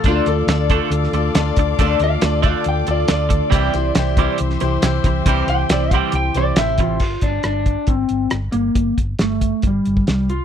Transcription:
<<
  \new Staff \with { instrumentName = "String section" } { \time 4/4 \key g \dorian \tempo 4 = 138 <a' d'' f'' d'''>1~ | <a' d'' f'' d'''>1 | <g' c'' e'' c'''>1~ | <g' c'' e'' c'''>1 |
r1 | r1 | }
  \new Staff \with { instrumentName = "Electric slide guitar" } { \time 4/4 \key g \dorian << { f'8 a'2. r8 | r8 f''8 d''8 f''8 g''8 d''8 d''4~ | d''2 r2 | r8 g''8 d''8 g''8 g''8 d''8 e''4 |
r1 | r1 | } \\ { r1 | r1 | r1 | r2. r8 f'8~ |
f'8 d'8 d'4 c'4 r8 bes8~ | bes8 r8 a4 g4 g8 f'8 | } >> }
  \new Staff \with { instrumentName = "Steel-string acoustic guitar" } { \time 4/4 \key g \dorian <d a d' f' a' d''>8 <d' f' a' d''>8 <d' f' a' d''>8 <d' f' a' d''>4 <d' f' a' d''>8 <d' f' a' d''>4 | <d a d' f' a' d''>8 <d' f' a' d''>8 <d' f' a' d''>8 <d' f' a' d''>4 <d' f' a' d''>8 <d' f' a' d''>4 | <c c' e' g' c''>8 <e' g' c''>8 <c' e' g' c''>8 <e' g' c''>4 <e' g' c''>8 <c' e' g' c''>4 | <c c' e' g' c''>8 <e' g' c''>8 <c' e' g' c''>8 <e' g' c''>4 <e' g' c''>8 <c' e' g' c''>4 |
r1 | r1 | }
  \new Staff \with { instrumentName = "Clean electric guitar" } { \clef bass \time 4/4 \key g \dorian <d a d'>8 <d a>8 <d a>8 <d a d'>8 <d a>8 <d a>8 <d a>8 <d a>8 | <d a d'>8 <d a>8 <d a>8 <d a d'>8 <d a>8 <d a>8 <d a>8 <d a>8 | <c e g>8 e8 <c e>8 <c e g>8 <c e>8 <c e>8 <c e>8 <c e>8 | <c e g>8 <c e>8 <c e>8 <c e g>8 <c e>8 <c e>8 <c e>8 <c e>8 |
r1 | r1 | }
  \new Staff \with { instrumentName = "Fingered electric bass" } { \clef bass \time 4/4 \key g \dorian d,8 d,8 d,4 d,8 d,8 d,8 d,8 | d,8 d,8 d,4 d,8 d,8 d,4 | c,8 c,8 c,4 c,8 c,8 c,8 c,8 | c,8 c,8 c,4 c,8 c,8 a,,4 |
g,,8 g,,8 g,,4 g,,8 g,,8 g,,8 g,,8 | g,,8 g,,8 g,,4 g,,8 g,,8 c,4 | }
  \new DrumStaff \with { instrumentName = "Drums" } \drummode { \time 4/4 <hh bd>8 hh8 <hh sn>8 <hh bd>8 hh16 sn16 hh8 <hh sn>8 <hh bd>8 | <hh bd>8 hh8 <hh sn>8 <hh bd>8 hh8 hh8 <hh sn>8 <hh bd>8 | <hh bd>8 hh8 <hh sn>8 <hh bd>8 hh16 sn16 hh8 <hh sn>8 <hh bd>8 | <hh bd>8 hh8 <hh sn>8 <hh bd>8 hh8 hh8 <hh sn>8 <hh bd>8 |
<cymc bd>8 <hh bd>8 <hh ss>8 <hh bd>8 <hh bd>8 hh8 <hh ss>8 hh8 | <hh bd>8 <hh bd>8 <hh sn>8 <hh bd>8 <hh bd>8 hh16 bd16 <hh sn>8 hh8 | }
>>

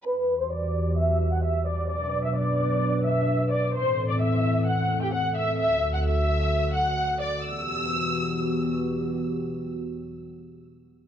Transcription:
<<
  \new Staff \with { instrumentName = "Violin section" } { \time 4/4 \key e \minor \tempo 4 = 130 <b' b''>8. <c'' c'''>16 <d'' d'''>4 <e'' e'''>8. <fis'' fis'''>16 <e'' e'''>8 <d'' d'''>8 | <d'' d'''>8. <e'' e'''>16 <d'' d'''>4. <e'' e'''>4 <d'' d'''>8 | <c'' c'''>8. <d'' d'''>16 <e'' e'''>4 <fis'' fis'''>8. <g' g''>16 <fis'' fis'''>8 <e'' e'''>8 | <e'' e'''>8. <fis'' fis'''>16 <e'' e'''>4. <fis'' fis'''>4 <d'' d'''>8 |
e'''2. r4 | r1 | }
  \new Staff \with { instrumentName = "Analog synth pad" } { \time 4/4 \key e \minor << { g'1 | b'1 | a'1~ | a'1 |
<e b fis' g'>1~ | <e b fis' g'>1 | } \\ { <e, e fis'>1 | <b, fis d'>1 | <a, e c'>1 | <d, d fis'>1 |
r1 | r1 | } >> }
>>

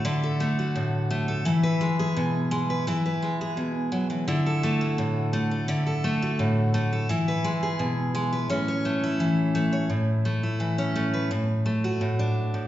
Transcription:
\new Staff \with { instrumentName = "Steel-string acoustic guitar" } { \time 4/4 \key a \major \tempo 4 = 170 << { <e' a'>8 a'4 fis'2 a'8 | e'8 b'4 gis'2 b'8 | e'8 b'4 gis'2~ gis'8 | e'8 a'4 fis'2 a'8 |
e'8 a'4 fis'2 a'8 | e'8 b'4 gis'2 b'8 | cis'8 cis''4 e'2 cis''8 | r4. e'4 cis'4 b'8 |
r4. fis'4 d'4. | } \\ { d4 a4 a,4 a4 | e4 gis4 b,4 gis4 | e4 gis4 b,4 fis8 e8 | d4 a4 a,4 a4 |
d4 a4 a,4 a4 | e4 gis4 b,4 gis4 | a,4 a4 e4 a4 | a,4 a4 e4 a4 |
a,4 a4 a,4. a,8 | } >> }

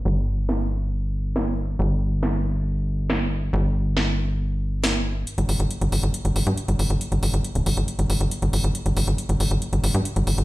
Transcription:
<<
  \new Staff \with { instrumentName = "Analog synth bass" } { \clef bass \time 4/4 \tempo 4 = 138 g,,1 | g,,1 | g,,1 | r16 g,,16 g,,16 g,,16 r16 g,,16 g,,16 g,,16 r16 g,,16 g,,16 g,16 r16 g,,16 g,,16 g,,16 |
r16 g,,16 g,,16 g,,16 r16 d,,16 g,,16 g,,16 r16 g,,16 g,,16 g,,16 r16 g,,16 g,,16 g,,16 | r16 g,,16 g,,16 g,,16 r16 g,,16 g,,16 g,,16 r16 g,,16 g,,16 g,16 r16 g,,16 g,,16 g,,16 | }
  \new DrumStaff \with { instrumentName = "Drums" } \drummode { \time 4/4 r4 sn4 r4 sn4 | r4 sn4 r4 sn4 | r4 sn4 r4 sn4 | hh16 hh16 hho16 hh16 hh16 hh16 hho16 hh16 hh16 hh16 hho16 hh16 hh16 hh16 hho16 hh16 |
hh16 hh16 hho16 hh16 hh16 hh16 hho16 hh16 hh16 hh16 hho16 hh16 hh16 hh16 hho16 hh16 | hh16 hh16 hho16 hh16 hh16 hh16 hho16 hh16 hh16 hh16 hho16 hh16 hh16 hh16 hho16 hh16 | }
>>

